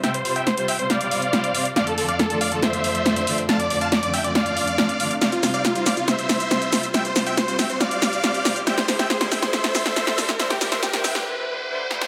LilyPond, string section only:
\new Staff \with { instrumentName = "String section" } { \time 4/4 \key f \major \tempo 4 = 139 <c g f' c''>8 <c g f' c''>8 r16 <c g f' c''>8 <c g f' c''>16 <c g f' c''>16 <c g f' c''>16 <c g f' c''>8 <c g f' c''>8 <c g f' c''>8 | <f, d a f' d''>8 <f, d a f' d''>8 r16 <f, d a f' d''>8 <f, d a f' d''>16 <f, d a f' d''>16 <f, d a f' d''>16 <f, d a f' d''>8 <f, d a f' d''>8 <f, d a f' d''>8 | <f, d a f' d''>8 <f, d a f' d''>8 r16 <f, d a f' d''>8 <f, d a f' d''>16 <f, d a f' d''>16 <f, d a f' d''>16 <f, d a f' d''>8 <f, d a f' d''>8 <f, d a f' d''>8 | <c g f' c''>8 <c g f' c''>8 r16 <c g f' c''>8 <c g f' c''>16 <c g f' c''>16 <c g f' c''>16 <c g f' c''>8 <c g f' c''>8 <c g f' c''>8 |
<c g f' c''>8 <c g f' c''>8 r16 <c g f' c''>8 <c g f' c''>16 <c g f' c''>16 <c g f' c''>16 <c g f' c''>8 <c g f' c''>8 <c g f' c''>8 | <d g e' c''>8 <d g e' c''>8 r16 <d g e' c''>8 <d g e' c''>16 <d g e' c''>16 <d g e' c''>16 <d g e' c''>8 <d g e' c''>8 <d g e' c''>8 | <d g e' c''>8 <d g e' c''>8 r16 <d g e' c''>8 <d g e' c''>16 <d g e' c''>16 <d g e' c''>16 <d g e' c''>8 <d g e' c''>8 <d g e' c''>8 | }